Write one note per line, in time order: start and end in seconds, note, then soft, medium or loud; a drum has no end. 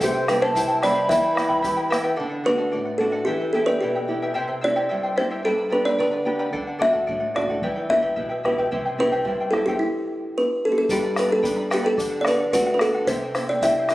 0.00 1.07 C3 medium
0.00 0.13 E4 medium
0.00 0.14 G4 medium
0.00 0.28 G4 medium
0.00 0.12 C5 medium
0.00 0.27 C5 medium
0.00 0.15 E5 medium
0.00 0.12 G5 medium
0.00 bombo low medium
0.00 shaker medium
0.13 0.27 E4 soft
0.13 0.28 C5 medium
0.13 0.28 G5 soft
0.28 0.55 G3 medium
0.28 0.41 E4 medium
0.28 0.43 B4 medium
0.28 0.41 C5 medium
0.28 0.42 E5 medium
0.28 0.40 G5 medium
0.28 0.42 G5 medium
0.28 bombo rim medium
0.28 shaker medium
0.41 0.54 E4 soft
0.41 0.55 C5 medium
0.41 0.80 C5 medium
0.41 0.55 G5 soft
0.41 0.80 A5 medium
0.55 0.68 E4 medium
0.55 0.82 E4 medium
0.55 0.67 C5 medium
0.55 0.69 E5 medium
0.55 0.67 G5 medium
0.55 bombo low medium
0.55 shaker loud
0.68 0.82 E4 soft
0.68 0.82 C5 soft
0.68 0.82 G5 medium
0.82 1.09 G3 medium
0.82 0.95 E4 medium
0.82 0.95 G4 medium
0.82 0.94 C5 medium
0.82 1.08 D5 medium
0.82 0.95 E5 medium
0.82 0.94 G5 medium
0.82 1.09 B5 medium
0.82 bombo rim soft
0.82 shaker medium
0.95 1.08 E4 medium
0.95 1.07 G4 medium
0.95 1.09 C5 medium
0.95 1.08 E5 medium
0.95 1.09 G5 medium
1.09 2.16 E3 medium
1.09 1.23 E4 medium
1.09 1.23 G4 medium
1.09 1.23 B4 medium
1.09 1.23 E5 medium
1.09 1.87 E5 medium
1.09 1.22 G5 medium
1.09 1.88 B5 medium
1.09 bombo low medium
1.09 shaker medium
1.23 1.34 E4 soft
1.23 1.35 B4 soft
1.23 1.36 G5 soft
1.35 1.64 B3 soft
1.35 1.49 E4 medium
1.35 1.48 B4 medium
1.35 1.50 E5 medium
1.35 1.48 G5 medium
1.35 bombo rim medium
1.35 shaker medium
1.49 1.61 E4 soft
1.49 1.62 B4 soft
1.49 1.62 G5 medium
1.49 bombo low medium
1.62 1.76 E4 medium
1.62 1.91 G4 medium
1.62 1.76 B4 medium
1.62 1.77 E5 medium
1.62 1.75 G5 medium
1.62 bombo low medium
1.62 shaker medium
1.76 1.89 E4 soft
1.76 1.89 B4 medium
1.76 1.90 G5 medium
1.90 2.18 B3 medium
1.90 2.03 E4 medium
1.90 2.03 G4 medium
1.90 2.02 B4 medium
1.90 2.03 E5 medium
1.90 2.02 G5 medium
1.90 bombo rim medium
1.90 shaker medium
2.03 2.18 E4 medium
2.03 2.18 G4 medium
2.03 2.16 B4 medium
2.03 2.16 E5 medium
2.03 2.17 G5 medium
2.16 2.72 D3 medium
2.16 2.31 A4 medium
2.16 2.30 D5 medium
2.16 2.28 F#5 medium
2.29 2.43 D5 soft
2.29 2.44 F#5 soft
2.44 2.90 A3 soft
2.44 2.90 D4 soft
2.44 2.90 F#4 medium
2.44 2.58 A4 medium
2.44 2.96 B4 medium
2.44 2.57 D5 medium
2.44 2.56 F#5 medium
2.58 2.70 A4 soft
2.58 2.71 D5 medium
2.58 2.72 F#5 medium
2.71 3.26 A2 medium
2.71 2.86 A4 medium
2.71 2.86 D5 medium
2.71 2.84 F#5 medium
2.85 2.98 D5 soft
2.85 2.99 F#5 medium
2.98 3.22 A3 soft
2.98 3.22 D4 soft
2.98 3.22 F#4 medium
2.98 3.24 A4 medium
2.98 3.12 A4 medium
2.98 3.11 D5 medium
2.98 3.11 F#5 medium
3.12 3.27 A4 soft
3.12 3.26 D5 soft
3.12 3.27 F#5 medium
3.25 3.80 E3 medium
3.25 3.41 E4 medium
3.25 3.54 G4 medium
3.25 3.40 G4 medium
3.25 3.40 B4 medium
3.25 3.41 E5 medium
3.25 3.39 G5 medium
3.40 3.53 E4 soft
3.40 3.54 B4 soft
3.40 3.54 G5 medium
3.53 3.98 B3 soft
3.53 3.66 E4 medium
3.53 3.98 E4 soft
3.53 3.98 G4 soft
3.53 3.63 A4 medium
3.53 3.66 B4 medium
3.53 3.67 E5 medium
3.53 3.67 G5 medium
3.66 3.81 E4 soft
3.66 3.82 G4 soft
3.66 3.81 B4 medium
3.66 3.82 B4 medium
3.66 3.69 D5 medium
3.66 3.80 E5 medium
3.66 3.82 G5 medium
3.81 4.35 B2 medium
3.81 3.95 E4 medium
3.81 4.19 G4 medium
3.81 3.95 B4 medium
3.81 3.95 E5 medium
3.81 3.94 G5 medium
3.95 4.09 E4 soft
3.95 4.09 B4 soft
3.95 4.09 G5 soft
4.08 4.30 B3 soft
4.08 4.31 E4 soft
4.08 4.21 E4 medium
4.08 4.31 G4 soft
4.08 4.21 B4 medium
4.08 4.22 E5 soft
4.08 4.21 G5 soft
4.22 4.33 E4 medium
4.22 4.33 G4 medium
4.22 4.35 B4 medium
4.22 4.33 E5 medium
4.22 4.34 G5 medium
4.34 4.89 C3 medium
4.34 4.47 E4 medium
4.34 4.49 G4 medium
4.34 4.47 C5 medium
4.34 4.49 E5 medium
4.34 4.46 G5 medium
4.48 4.61 E4 soft
4.48 4.61 C5 soft
4.48 4.62 G5 medium
4.61 5.07 C4 soft
4.61 4.75 E4 medium
4.61 5.08 E4 soft
4.61 5.08 G4 medium
4.61 4.75 C5 medium
4.61 5.20 D5 medium
4.61 4.75 E5 medium
4.61 4.75 G5 medium
4.76 4.88 E4 medium
4.76 4.91 G4 medium
4.76 4.88 C5 medium
4.76 4.88 E5 medium
4.76 4.89 G5 medium
4.89 5.44 G2 medium
4.89 5.03 E4 medium
4.89 5.02 C5 medium
4.89 5.03 E5 medium
4.89 5.02 G5 medium
5.03 5.15 E4 soft
5.03 5.16 C5 medium
5.03 5.16 G5 soft
5.16 5.40 C4 medium
5.16 5.30 E4 medium
5.16 5.40 E4 soft
5.16 5.40 G4 medium
5.16 5.29 C5 medium
5.16 5.46 C5 medium
5.16 5.30 E5 soft
5.16 5.30 G5 medium
5.31 5.44 E4 medium
5.31 5.43 G4 medium
5.31 5.44 C5 medium
5.31 5.44 E5 soft
5.31 5.43 G5 medium
5.44 5.98 G2 medium
5.44 5.58 G4 medium
5.44 5.73 A4 medium
5.44 5.58 B4 medium
5.44 5.57 D5 medium
5.44 5.58 G5 medium
5.44 5.56 B5 medium
5.58 5.69 B4 soft
5.58 5.70 D5 soft
5.58 5.70 B5 soft
5.70 6.16 B3 soft
5.70 6.16 D4 soft
5.70 6.16 G4 soft
5.70 5.84 B4 medium
5.70 5.86 B4 medium
5.70 5.84 D5 medium
5.70 5.84 G5 medium
5.70 5.84 B5 medium
5.85 5.99 G4 medium
5.85 5.98 B4 medium
5.85 5.98 D5 medium
5.85 5.97 G5 medium
5.85 5.99 B5 medium
5.98 6.52 D3 medium
5.98 6.12 B4 medium
5.98 6.38 B4 medium
5.98 6.11 D5 medium
5.98 6.13 G5 medium
5.98 6.10 B5 medium
6.11 6.25 B4 soft
6.11 6.26 D5 soft
6.11 6.25 B5 soft
6.25 6.48 B3 soft
6.25 6.48 D4 soft
6.25 6.48 G4 medium
6.25 6.38 B4 medium
6.25 6.38 D5 soft
6.25 6.38 G5 soft
6.25 6.38 B5 soft
6.39 6.54 G4 soft
6.39 6.53 B4 soft
6.39 6.51 D5 medium
6.39 6.52 G5 medium
6.39 6.53 B5 medium
6.53 7.06 D3 medium
6.53 6.67 A4 medium
6.53 6.67 D5 medium
6.53 6.66 F#5 medium
6.53 bombo low medium
6.67 6.78 D5 soft
6.67 6.79 F#5 soft
6.79 7.24 A3 soft
6.79 7.25 D4 soft
6.79 7.25 F#4 medium
6.79 6.92 A4 medium
6.79 6.91 D5 medium
6.79 7.38 E5 medium
6.79 6.92 F#5 medium
6.79 bombo low medium
6.93 7.06 A4 medium
6.93 7.06 D5 soft
6.93 7.06 F#5 medium
6.93 bombo low medium
7.07 7.61 A2 medium
7.07 7.21 A4 medium
7.07 7.20 D5 medium
7.07 7.19 F#5 medium
7.07 bombo low medium
7.20 7.34 D5 soft
7.20 7.35 F#5 medium
7.34 7.58 A3 soft
7.34 7.58 D4 soft
7.34 7.58 F#4 soft
7.34 7.49 A4 medium
7.34 7.49 D5 medium
7.34 7.61 D5 medium
7.34 7.49 F#5 soft
7.34 bombo rim soft
7.34 bombo low medium
7.49 7.63 A4 soft
7.49 7.63 D5 medium
7.49 7.63 F#5 medium
7.49 bombo low medium
7.62 8.16 E3 medium
7.62 7.77 E4 medium
7.62 7.76 G4 medium
7.62 7.76 B4 medium
7.62 7.77 E5 medium
7.62 7.74 G5 medium
7.62 bombo low medium
7.76 7.89 E4 soft
7.76 7.89 B4 soft
7.76 7.90 G5 medium
7.89 8.33 B3 soft
7.89 8.33 E4 soft
7.89 8.01 E4 medium
7.89 8.33 G4 soft
7.89 8.01 B4 medium
7.89 8.01 E5 medium
7.89 8.46 E5 medium
7.89 8.01 G5 medium
7.89 bombo low medium
8.02 8.16 E4 medium
8.02 8.17 G4 soft
8.02 8.16 B4 medium
8.02 8.15 E5 medium
8.02 8.16 G5 medium
8.02 bombo low medium
8.16 8.70 B2 medium
8.16 8.30 E4 medium
8.16 8.29 B4 medium
8.16 8.30 E5 medium
8.16 8.28 G5 medium
8.16 bombo low medium
8.29 8.44 E4 soft
8.29 8.44 B4 soft
8.29 8.44 G5 soft
8.44 8.66 B3 soft
8.44 8.58 E4 medium
8.44 8.67 E4 soft
8.44 8.67 G4 medium
8.44 8.58 B4 soft
8.44 8.70 B4 medium
8.44 8.58 E5 medium
8.44 8.57 G5 medium
8.44 bombo rim soft
8.44 bombo low medium
8.58 8.71 E4 medium
8.58 8.70 G4 soft
8.58 8.72 B4 medium
8.58 8.70 E5 medium
8.58 8.71 G5 medium
8.58 bombo low medium
8.71 9.25 C3 medium
8.71 8.85 E4 medium
8.71 8.85 G4 medium
8.71 8.85 C5 medium
8.71 8.85 E5 medium
8.71 8.84 G5 medium
8.71 bombo low medium
8.85 8.98 E4 soft
8.85 8.99 C5 soft
8.85 8.99 G5 soft
8.98 9.42 C4 soft
8.98 9.42 E4 soft
8.98 9.11 E4 medium
8.98 9.43 G4 soft
8.98 9.50 B4 medium
8.98 9.11 C5 medium
8.98 9.12 E5 medium
8.98 9.11 G5 medium
8.98 bombo low soft
9.12 9.26 E4 medium
9.12 9.27 G4 soft
9.12 9.26 C5 medium
9.12 9.26 E5 medium
9.12 9.26 G5 medium
9.12 bombo low medium
9.25 9.78 G2 medium
9.25 9.40 E4 medium
9.25 9.40 C5 medium
9.25 9.40 E5 medium
9.25 9.39 G5 medium
9.25 bombo low medium
9.40 9.53 E4 soft
9.40 9.54 C5 soft
9.40 9.54 G5 medium
9.51 9.74 C4 soft
9.51 9.74 E4 soft
9.51 9.67 E4 medium
9.51 9.75 G4 soft
9.51 9.65 A4 medium
9.51 9.67 E5 soft
9.51 bombo rim soft
9.51 bombo low soft
9.55 9.67 C5 medium
9.55 9.67 G5 medium
9.66 9.82 E4 medium
9.66 9.81 G4 medium
9.66 9.82 G4 medium
9.66 9.81 C5 medium
9.66 9.82 E5 soft
9.66 9.81 G5 medium
9.66 bombo low medium
9.79 10.58 E4 medium
10.38 10.65 B4 medium
10.65 10.71 A4 medium
10.72 10.78 G4 medium
10.78 10.91 A4 medium
10.89 11.95 G2 medium
10.89 11.04 G4 medium
10.89 11.19 G4 medium
10.89 11.03 B4 medium
10.89 11.03 D5 medium
10.89 11.04 G5 medium
10.89 11.02 B5 medium
10.89 bombo low medium
10.89 shaker medium
11.04 11.16 B4 soft
11.04 11.16 D5 soft
11.04 11.17 B5 soft
11.16 11.31 B4 medium
11.16 11.30 D5 medium
11.16 11.30 G5 soft
11.16 11.29 B5 medium
11.16 bombo rim soft
11.16 shaker medium
11.31 11.70 A4 medium
11.31 11.41 B4 soft
11.31 11.42 D5 soft
11.31 11.42 B5 soft
11.42 11.97 G3 soft
11.42 11.97 B3 soft
11.42 11.97 D4 medium
11.42 11.56 B4 medium
11.42 11.56 D5 medium
11.42 11.57 G5 medium
11.42 11.55 B5 medium
11.42 bombo low medium
11.42 shaker loud
11.56 11.70 B4 soft
11.56 11.70 D5 soft
11.56 11.70 B5 soft
11.70 11.84 G4 medium
11.70 11.87 G4 medium
11.70 11.83 B4 medium
11.70 11.83 D5 medium
11.70 11.84 G5 medium
11.70 11.82 B5 medium
11.70 bombo rim medium
11.70 shaker medium
11.83 11.99 G4 medium
11.83 12.21 A4 medium
11.83 11.98 B4 medium
11.83 11.96 D5 medium
11.83 11.97 G5 medium
11.83 11.98 B5 medium
11.97 13.04 D3 medium
11.97 12.11 A4 medium
11.97 12.11 D5 medium
11.97 12.09 F#5 medium
11.97 bombo low medium
11.97 shaker medium
12.10 12.24 D5 soft
12.10 12.24 F#5 soft
12.21 12.39 A4 medium
12.21 12.27 D5 medium
12.21 12.39 D5 medium
12.21 bombo rim medium
12.25 12.52 B4 medium
12.25 12.38 F#5 medium
12.25 shaker medium
12.40 12.52 D5 soft
12.40 12.53 F#5 soft
12.52 13.06 A3 medium
12.52 13.07 D4 soft
12.52 13.07 F#4 medium
12.52 12.66 A4 medium
12.52 12.73 B4 medium
12.52 12.67 D5 medium
12.52 12.65 F#5 medium
12.52 bombo low medium
12.52 shaker loud
12.66 12.80 D5 soft
12.66 12.80 F#5 medium
12.74 12.81 B4 medium
12.79 12.94 A4 medium
12.79 13.06 A4 medium
12.79 12.94 D5 medium
12.79 12.93 F#5 medium
12.79 bombo rim medium
12.79 shaker medium
12.94 13.09 A4 medium
12.94 13.08 D5 medium
12.94 13.08 F#5 medium
13.07 13.95 C3 medium
13.07 13.22 E4 medium
13.07 13.22 G4 medium
13.07 13.34 C5 loud
13.07 13.22 C5 medium
13.07 13.22 E5 medium
13.07 13.22 G5 medium
13.07 bombo low medium
13.07 shaker medium
13.23 13.35 E4 soft
13.23 13.36 C5 medium
13.23 13.36 G5 medium
13.35 13.49 E4 medium
13.35 13.49 C5 medium
13.35 13.49 E5 medium
13.35 13.48 G5 medium
13.35 bombo rim medium
13.35 shaker medium
13.49 13.63 E4 soft
13.49 13.63 C5 soft
13.49 13.62 D5 medium
13.49 13.63 G5 medium
13.61 13.95 C4 soft
13.61 13.95 E4 soft
13.61 13.77 E4 medium
13.61 13.95 G4 medium
13.61 13.77 C5 medium
13.61 13.76 E5 medium
13.61 13.75 E5 loud
13.61 13.76 G5 medium
13.61 bombo low medium
13.61 shaker medium
13.77 13.91 E4 soft
13.77 13.91 C5 medium
13.77 13.90 G5 medium
13.89 13.95 E5 medium
13.89 bombo rim medium
13.89 shaker medium